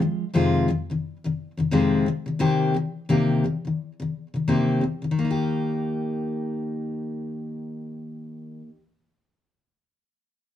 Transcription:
0.00 0.28 F2 medium
0.00 0.29 C3 medium
0.00 0.30 D#3 medium
0.00 0.24 F3 medium
0.00 0.24 G#3 medium
0.00 0.24 F4 medium
0.34 0.67 F2 medium
0.34 0.68 C3 medium
0.34 0.69 D#3 medium
0.34 0.69 G#3 medium
0.34 0.69 C4 medium
0.34 0.69 F4 medium
0.68 0.89 F2 medium
0.68 0.89 C3 medium
0.68 0.90 D#3 medium
0.90 1.16 F2 soft
0.90 1.16 C3 medium
0.90 1.17 D#3 soft
1.24 1.50 F2 medium
1.24 1.51 C3 medium
1.24 1.51 D#3 medium
1.57 1.70 F2 medium
1.57 1.70 C3 medium
1.57 1.71 D#3 medium
1.71 2.06 F2 medium
1.71 2.05 C3 medium
1.71 2.07 D#3 medium
1.71 2.07 G#3 medium
1.71 2.07 C4 medium
1.71 2.07 F4 medium
2.06 2.25 C3 medium
2.06 2.26 D#3 medium
2.26 2.38 C3 soft
2.26 2.39 D#3 medium
2.39 2.73 C3 medium
2.39 2.75 D#3 medium
2.39 2.75 A#3 medium
2.39 2.75 C4 medium
2.39 2.75 G4 medium
2.74 3.04 C3 medium
2.74 3.05 D#3 medium
3.09 3.43 C3 medium
3.09 3.45 D#3 medium
3.09 3.45 A#3 medium
3.09 3.45 C4 medium
3.09 3.45 G4 medium
3.44 3.64 C3 medium
3.44 3.66 D#3 medium
3.65 3.91 C3 soft
3.65 3.93 D#3 medium
4.00 4.26 C3 medium
4.00 4.27 D#3 medium
4.34 4.46 C3 soft
4.34 4.46 D#3 medium
4.48 4.80 C3 medium
4.48 4.82 D#3 medium
4.48 4.83 A#3 medium
4.48 4.83 C4 medium
4.48 4.83 G4 medium
4.81 5.01 C3 medium
4.81 5.03 D#3 medium
5.02 5.17 C3 soft
5.02 5.10 D#3 soft
5.11 8.61 D#3 medium
5.19 8.69 A#3 medium
5.25 8.75 D#4 medium
5.31 8.81 G4 medium

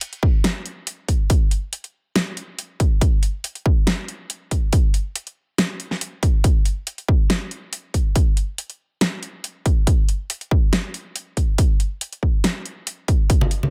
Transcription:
0.01 closed hi-hat medium
0.13 closed hi-hat soft
0.23 kick loud
0.44 snare loud
0.44 closed hi-hat medium
0.66 closed hi-hat medium
0.87 closed hi-hat medium
1.08 kick medium
1.08 closed hi-hat medium
1.30 kick loud
1.30 closed hi-hat medium
1.51 closed hi-hat medium
1.73 closed hi-hat medium
1.84 closed hi-hat soft
2.16 snare loud
2.16 closed hi-hat medium
2.37 closed hi-hat medium
2.59 closed hi-hat medium
2.80 kick loud
2.80 closed hi-hat medium
3.01 kick loud
3.01 closed hi-hat medium
3.23 closed hi-hat medium
3.44 closed hi-hat medium
3.55 closed hi-hat soft
3.66 kick loud
3.87 snare loud
3.87 closed hi-hat medium
4.08 closed hi-hat medium
4.30 closed hi-hat medium
4.51 kick medium
4.51 closed hi-hat medium
4.73 kick loud
4.73 closed hi-hat medium
4.94 closed hi-hat medium
5.16 closed hi-hat medium
5.27 closed hi-hat soft
5.58 snare loud
5.58 closed hi-hat medium
5.80 closed hi-hat medium
5.91 snare soft
6.01 closed hi-hat medium
6.23 kick loud
6.23 closed hi-hat medium
6.44 kick loud
6.44 closed hi-hat medium
6.65 closed hi-hat medium
6.87 closed hi-hat medium
6.98 closed hi-hat soft
7.08 kick loud
7.30 snare loud
7.30 closed hi-hat medium
7.51 closed hi-hat medium
7.73 closed hi-hat medium
7.94 kick medium
7.94 closed hi-hat medium
8.15 kick loud
8.15 closed hi-hat medium
8.37 closed hi-hat medium
8.58 closed hi-hat medium
8.70 closed hi-hat soft
9.01 snare loud
9.01 closed hi-hat medium
9.23 closed hi-hat soft
9.44 closed hi-hat medium
9.66 kick loud
9.66 closed hi-hat soft
9.87 kick loud
9.87 closed hi-hat medium
10.09 closed hi-hat medium
10.30 closed hi-hat medium
10.41 closed hi-hat soft
10.51 kick loud
10.73 snare loud
10.73 closed hi-hat medium
10.94 closed hi-hat medium
11.16 closed hi-hat medium
11.37 kick medium
11.37 closed hi-hat medium
11.58 kick loud
11.58 closed hi-hat medium
11.80 closed hi-hat medium
12.01 closed hi-hat medium
12.13 closed hi-hat soft
12.23 kick medium
12.44 snare loud
12.44 closed hi-hat medium
12.66 closed hi-hat medium
12.87 closed hi-hat medium
13.08 kick loud
13.08 closed hi-hat medium
13.30 kick loud
13.30 closed hi-hat medium
13.41 high conga loud
13.51 closed hi-hat medium
13.63 high conga medium

